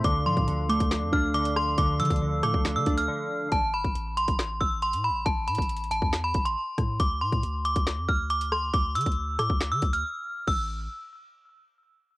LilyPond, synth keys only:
\new Staff \with { instrumentName = "Synth keys" } { \clef bass \time 4/4 \key a \minor \tempo 4 = 138 d8 f8 d8 a8 d8 d'8 d4 | d8 f8 d8 a8 d8 d'8 d4 | r1 | r1 |
r1 | r1 | r1 | }